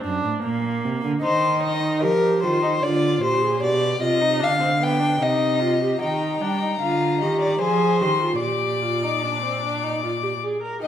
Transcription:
0.03 F#2 D4
0.25 A2
0.43 A#2 A#3
0.84 C3
1.04 D3
1.22 D#3 D#4 C5
1.63 D#5
2.02 F3 G4 A#4
2.43 D#3 F4 C5
2.62 D#4
2.82 D3 F4 D5
3.21 A#2 G4 C5
3.41 G#4
3.61 B2 G4 D5
4.01 C3 F4 D#5
4.21 D#4
4.40 D3 D4 F5
4.60 C4
4.79 B3 G5
4.99 D4
5.20 C3 D#4 D#5
5.60 F4
5.81 G4
6.01 D#3 D#4 G5 A#5
6.41 G3 D4 G5
6.61 D#4
6.81 D3 F4 F5
7.21 D#3 G4 D#5
7.42 D5
7.61 F3 G#4 C5 G#5
8.01 D#3 G4 C6
8.22 F4
8.40 A#2 G4 D5 D6
8.82 F4
9.02 D#4
9.22 D4
9.42 C4
9.62 D4
9.82 D#4
10.03 F4
10.23 G4
10.43 G#4
10.63 A#4
10.83 D#3 D#4 G4 D#5

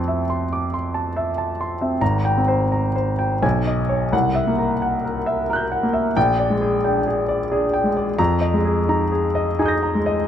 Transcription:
Already playing: F2 C4 A5 C6
0.08 E5
0.30 C6
0.53 D6
0.74 C6
0.94 A5
1.16 E5
1.38 A5
1.61 C6
1.81 C4 E5
2.01 G#1 A#5
2.25 G5
2.37 C4
2.48 C5
2.72 A#5
2.96 C5
3.19 G5
3.42 B1 G#5
3.67 D#5
3.89 C#5
4.12 C2 F#5
4.35 E5
4.47 A#3
4.58 A#4
4.82 F#5
5.05 A#4
5.26 E5
5.50 A#4 A#5 F#6
5.56 G6
5.72 F#5
5.83 A#3
5.93 E5
6.17 A#1 G5
6.40 D5
6.50 G#3
6.61 G#4
6.84 D4 G5
7.07 G#4
7.28 D5
7.52 D4 G#4
7.74 G5
7.84 G#3
7.97 D5
8.19 F2 A#5
8.41 D#5
8.54 G#3
8.65 G#4
8.89 D#4 A#5
9.12 G#4
9.35 D#5
9.59 D#4 G#4 G#5 D#6
9.66 G6 A#6
9.83 A#5
9.95 G#3
10.06 D#5

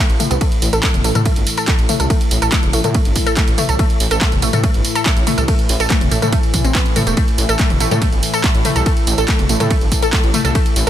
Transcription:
Already playing: A2 E3
0.10 A1, closed hi-hat
0.20 A3, open hi-hat, mid tom, tambourine
0.31 C2 B3, closed hi-hat, tambourine
0.41 A2 E3 A3, kick, closed hi-hat, ride, tambourine
0.52 closed hi-hat
0.62 A1, open hi-hat, tambourine
0.73 A1 A4, closed hi-hat, tambourine
0.83 A3, kick, clap, closed hi-hat, ride
0.94 E1, closed hi-hat, mid tom
1.04 A1 A3, open hi-hat, tambourine
1.15 A2 A4, closed hi-hat, mid tom, tambourine
1.26 A3, kick, closed hi-hat, ride, tambourine
1.36 G1, closed hi-hat
1.47 open hi-hat, tambourine
1.57 A4, closed hi-hat, tambourine
1.68 A3, kick, clap, closed hi-hat, ride, tambourine
1.79 A1, closed hi-hat
1.89 A3, open hi-hat, mid tom, tambourine
2.00 C2 A4, closed hi-hat, tambourine
2.10 A3, kick, closed hi-hat, ride, tambourine
2.21 closed hi-hat
2.31 A1, open hi-hat, tambourine
2.42 A1 A4, closed hi-hat, tambourine
2.52 A3, kick, clap, closed hi-hat, ride, tambourine
2.63 E1, closed hi-hat, mid tom
2.73 A1 A3, open hi-hat, tambourine
2.84 A2 A4, closed hi-hat, mid tom, tambourine
2.95 A3, kick, closed hi-hat, ride, tambourine
3.05 G1, closed hi-hat
3.16 kick, open hi-hat, tambourine
3.26 A4, closed hi-hat, tambourine
3.37 A3, kick, clap, closed hi-hat, ride, tambourine
3.48 A1, closed hi-hat
3.58 A3, open hi-hat, mid tom, tambourine
3.69 C2 A4, closed hi-hat, tambourine
3.79 A3, kick, closed hi-hat, ride, tambourine
3.90 closed hi-hat
4.00 A1, open hi-hat, tambourine
4.11 A1 A4, closed hi-hat, tambourine
4.21 A3, kick, clap, closed hi-hat, ride, tambourine
4.32 E1, closed hi-hat, mid tom
4.42 A1 A3, open hi-hat, tambourine
4.53 A2 A4, closed hi-hat, mid tom, tambourine
4.64 A3, kick, closed hi-hat, ride, tambourine
4.74 G1, closed hi-hat
4.85 open hi-hat, tambourine
4.95 A4, closed hi-hat, tambourine
5.06 A3, kick, clap, closed hi-hat, ride
5.17 A1, closed hi-hat
5.27 A3, open hi-hat, mid tom, tambourine
5.38 C2 A4, closed hi-hat, tambourine
5.48 A3, kick, closed hi-hat, ride, tambourine
5.59 closed hi-hat
5.69 A1, open hi-hat, tambourine
5.80 A1 A4, closed hi-hat, tambourine
5.90 A3, kick, clap, closed hi-hat, ride, tambourine
6.01 E1, closed hi-hat, mid tom
6.11 A1 A3, open hi-hat, tambourine
6.22 A2 A4, closed hi-hat, mid tom, tambourine
6.32 A3, kick, closed hi-hat, ride, tambourine
6.43 closed hi-hat
6.54 kick, open hi-hat, mid tom, tambourine
6.64 A1 C4, closed hi-hat, tambourine
6.75 B3, kick, clap, closed hi-hat, ride, tambourine
6.86 closed hi-hat
6.96 A2 A4, open hi-hat, mid tom, tambourine
7.07 E1 A3, closed hi-hat, tambourine
7.17 A3, kick, closed hi-hat, ride, tambourine
7.28 closed hi-hat
7.38 A1, open hi-hat, tambourine
7.49 A1 A4, closed hi-hat, tambourine
7.59 A3, kick, clap, closed hi-hat, ride
7.70 E1, closed hi-hat, mid tom
7.80 A1 A3, open hi-hat, tambourine
7.91 A2 A4, closed hi-hat, mid tom, tambourine
8.02 A3, kick, closed hi-hat, ride, tambourine
8.12 G1, closed hi-hat
8.23 open hi-hat, tambourine
8.34 A4, closed hi-hat, tambourine
8.44 A3, kick, clap, closed hi-hat, ride, tambourine
8.55 A1, closed hi-hat
8.65 A3, open hi-hat, mid tom, tambourine
8.76 C2 A4, closed hi-hat, tambourine
8.86 A3, kick, closed hi-hat, ride, tambourine
8.97 closed hi-hat
9.07 A1, open hi-hat, tambourine
9.18 A1 A4, closed hi-hat, tambourine
9.28 A3, kick, clap, closed hi-hat, ride
9.39 E1, closed hi-hat, mid tom
9.49 A1 A3, open hi-hat, tambourine
9.60 A2 A4, closed hi-hat, mid tom, tambourine
9.70 A3, kick, closed hi-hat, ride, tambourine
9.81 G1, closed hi-hat
9.92 kick, open hi-hat, tambourine
10.02 A4, closed hi-hat, tambourine
10.13 A3, kick, clap, closed hi-hat, ride, tambourine
10.24 A1, closed hi-hat
10.34 A3, open hi-hat, mid tom, tambourine
10.45 C2 A4, closed hi-hat, tambourine
10.55 A3, kick, closed hi-hat, ride, tambourine
10.66 closed hi-hat
10.76 A1, open hi-hat, tambourine

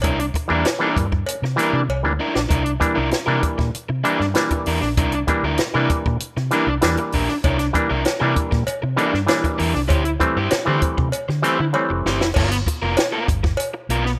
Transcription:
0.02 C2 D4 E4 A#4, kick, closed hi-hat, cowbell
0.20 muted overdriven electric guitar stroke, closed hi-hat
0.34 muted overdriven electric guitar stroke, kick, closed hi-hat
0.48 E2 E3 G3 A#3 D4 E4 A#4
0.53 D4
0.65 muted overdriven electric guitar stroke, snare, closed hi-hat, cowbell
0.79 E3 G3 A#3 D4 E4 A#4
0.97 G2, muted overdriven electric guitar stroke, kick, closed hi-hat
1.12 muted overdriven electric guitar stroke, kick
1.26 A#3 D4, closed hi-hat, cowbell
1.42 C3, muted overdriven electric guitar stroke, snare
1.56 E3 G3 A#3 D4, snare, closed hi-hat
1.60 E4 A#4
1.73 C3, muted overdriven electric guitar stroke
1.89 C2, cowbell
2.03 D2 E3 G3 A#3 D4, muted overdriven electric guitar stroke
2.19 A#3 D4 E4 A#4
2.34 A#1 A#3 D4, muted overdriven electric guitar stroke, snare
2.49 C2 D4 E4 A#4, kick, closed hi-hat
2.64 muted overdriven electric guitar stroke, closed hi-hat
2.80 E3 G3 A#3 D4, muted overdriven electric guitar stroke, kick, closed hi-hat
2.95 C2 D4 E4 A#4
3.11 A#3 D4, muted overdriven electric guitar stroke, snare, closed hi-hat
3.26 C3 E3 G3 A#3 D4 E4 A#4
3.42 muted overdriven electric guitar stroke, kick, closed hi-hat
3.58 A#2, muted overdriven electric guitar stroke, kick, snare
3.74 muted fingered electric bass stroke, closed hi-hat
3.89 C3, muted overdriven electric guitar stroke
4.04 E3 G3 A#3 D4 E4 A#4, closed hi-hat
4.20 G2, muted overdriven electric guitar stroke, snare
4.34 E3 G3 A#3 D4, snare, closed hi-hat
4.50 muted overdriven electric guitar stroke, kick, closed hi-hat
4.66 E2 D4 E4 A#4, open hi-hat
4.81 A#1, muted overdriven electric guitar stroke, snare
4.97 C2 D4 E4 A#4, kick, closed hi-hat
5.12 muted overdriven electric guitar stroke, closed hi-hat
5.27 E3 G3 A#3 D4, muted overdriven electric guitar stroke, kick, closed hi-hat
5.43 D2 D4 E4 A#4
5.58 A#3 D4, muted fingered electric bass stroke, muted overdriven electric guitar stroke, snare, closed hi-hat
5.74 C3 E3 G3 A#3 D4 E4 A#4
5.89 muted overdriven electric guitar stroke, kick, closed hi-hat
6.06 A#2, muted overdriven electric guitar stroke, kick
6.20 muted fingered electric bass stroke, closed hi-hat
6.36 C3, muted overdriven electric guitar stroke, snare
6.51 E3 G3 A#3 D4 E4 A#4, snare, closed hi-hat
6.67 C2, muted overdriven electric guitar stroke
6.81 E2 E3 G3 A#3 D4, snare, closed hi-hat
6.97 muted overdriven electric guitar stroke, closed hi-hat
7.12 A#1 D4 E4 A#4, kick, open hi-hat
7.28 muted overdriven electric guitar stroke, snare
7.44 C2 D4 E4 A#4, kick, closed hi-hat, cowbell
7.59 muted overdriven electric guitar stroke, snare, closed hi-hat
7.73 E3 G3 A#3 D4, muted overdriven electric guitar stroke, kick, closed hi-hat
7.90 C2 D4 E4 A#4
8.04 A#3 D4, muted overdriven electric guitar stroke, snare, closed hi-hat, cowbell
8.20 C3 E3 G3 A#3 D4 E4 A#4
8.35 muted overdriven electric guitar stroke, kick, closed hi-hat
8.51 A#2, muted overdriven electric guitar stroke, kick, snare
8.67 muted fingered electric bass stroke, closed hi-hat, cowbell
8.82 C3, muted overdriven electric guitar stroke
8.96 E3 G3 A#3 D4 E4 A#4, closed hi-hat
9.13 G2, muted overdriven electric guitar stroke, snare
9.27 E3 G3 A#3 D4, snare, closed hi-hat, cowbell
9.44 muted overdriven electric guitar stroke, kick, closed hi-hat
9.58 E2 D4 E4 A#4, open hi-hat
9.74 C2, muted overdriven electric guitar stroke, snare
9.88 D2 E4 G4 C5, kick, closed hi-hat, cowbell
10.05 muted overdriven electric guitar stroke, closed hi-hat
10.20 E3 G3 A3 C4, muted overdriven electric guitar stroke, kick, closed hi-hat
10.36 G2 E4 G4 C5
10.50 A3 C4, muted overdriven electric guitar stroke, muted fingered electric bass stroke, snare, closed hi-hat, cowbell
10.65 D3 E3 G3 A3 C4 E4 G4 C5
10.82 muted overdriven electric guitar stroke, kick, closed hi-hat
10.98 C3, muted overdriven electric guitar stroke, kick
11.12 closed hi-hat, cowbell
11.28 D3, muted overdriven electric guitar stroke, snare
11.42 E3 G3 A3 C4 E4 G4 C5, snare, closed hi-hat
11.59 D3, muted overdriven electric guitar stroke
11.73 E3 G3 A3 C4, cowbell
11.90 F1, muted overdriven electric guitar stroke
12.06 G1 E4 G4 C5, snare
12.21 F1, muted overdriven electric guitar stroke, snare
12.34 G1 B3 F4 A#4, kick, crash, cowbell
12.51 muted overdriven electric guitar stroke, snare, closed hi-hat
12.66 muted overdriven electric guitar stroke, kick, closed hi-hat
12.82 F1 B3 F4 A#4
12.97 muted overdriven electric guitar stroke, snare, closed hi-hat, cowbell
13.12 B3 F4 A#4
13.28 G1, muted overdriven electric guitar stroke, kick, closed hi-hat
13.43 muted overdriven electric guitar stroke, kick, snare
13.57 closed hi-hat, cowbell
13.74 muted overdriven electric guitar stroke
13.89 B1 B3 F4 A#4, closed hi-hat
14.05 muted overdriven electric guitar stroke, snare

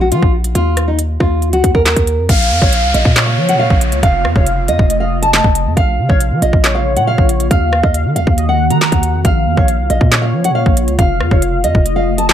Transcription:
Already playing: A#1
0.01 F#4
0.12 F3 F4, closed hi-hat
0.23 A#1, kick
0.44 closed hi-hat
0.55 D#2 F4, closed hi-hat
0.77 cross-stick, closed hi-hat
0.88 D#4
0.99 closed hi-hat
1.20 D#2 F4, kick, cross-stick
1.42 closed hi-hat
1.53 C#2 F#4, closed hi-hat
1.64 D#2, kick, closed hi-hat
1.75 D#2 A#4, kick
1.86 A#4, snare, clap, closed hi-hat
1.96 D#2, kick, closed hi-hat
2.07 closed hi-hat
2.18 F2
2.29 A#1 C#3 A#3 F4 F5, kick, closed hi-hat, crash, downlifter
2.51 F2
2.62 A#1 C#5, kick
2.73 closed hi-hat
2.83 C2
2.94 A#1 D#5, closed hi-hat
3.05 A#2, kick
3.16 C#5, snare, clap, closed hi-hat
3.26 F5
3.38 F3
3.49 F#5, closed hi-hat
3.54 A#2
3.59 F5
3.70 A#1, kick
3.81 closed hi-hat
3.92 C#2, closed hi-hat
4.03 F1 C3 A3 F5, kick, closed hi-hat
4.25 F2, cross-stick
4.36 F1 C#5, kick
4.47 closed hi-hat
4.68 F2 D#5, closed hi-hat
4.79 F1, kick
4.90 D#5, closed hi-hat
5.00 F5
5.22 A5, closed hi-hat
5.34 snare, clap, closed hi-hat
5.44 F1, kick
5.55 closed hi-hat
5.66 F2
5.76 A#1 C#3 A#3 F4 F5, kick, closed hi-hat
5.99 C#3
6.09 A#1 C#5, kick
6.20 closed hi-hat
6.31 F3
6.42 A#1 D#5, closed hi-hat
6.53 A#1, kick
6.64 C#5, snare, clap, closed hi-hat
6.75 F5
6.96 A#2 F#5, closed hi-hat
7.07 F5
7.18 A#1, kick
7.29 closed hi-hat
7.40 closed hi-hat
7.51 D#2 D#3 A#3 F#4 F5, kick, closed hi-hat
7.73 cross-stick
7.83 D#2 D#5, kick
7.94 closed hi-hat
8.05 D#3
8.16 D#2 F5, closed hi-hat
8.27 D#2, kick
8.38 D#5, closed hi-hat
8.49 F#5
8.60 F#5
8.70 D#3 A#5, closed hi-hat
8.81 A#5, snare, clap, closed hi-hat
8.92 D#2, kick, closed hi-hat
9.03 closed hi-hat
9.14 F2
9.24 A#1 C#3 F4 F5, kick, closed hi-hat
9.47 F2
9.57 A#1 C#5, kick
9.68 closed hi-hat
9.79 C2
9.90 A#1 D#5, closed hi-hat
10.01 A#2, kick
10.11 C#5, snare, clap, closed hi-hat
10.22 F5
10.33 F3
10.44 F#5, closed hi-hat
10.50 A#2
10.55 F5
10.66 A#1, kick
10.77 closed hi-hat
10.88 C#2, closed hi-hat
10.99 F1 C3 A3 F5, kick, closed hi-hat
11.20 F2, cross-stick
11.31 F1 C#5, kick
11.42 closed hi-hat
11.64 F2 D#5, closed hi-hat
11.75 F1, kick
11.86 D#5, closed hi-hat
11.96 F5
12.18 A5, closed hi-hat
12.29 A5, snare, clap, closed hi-hat

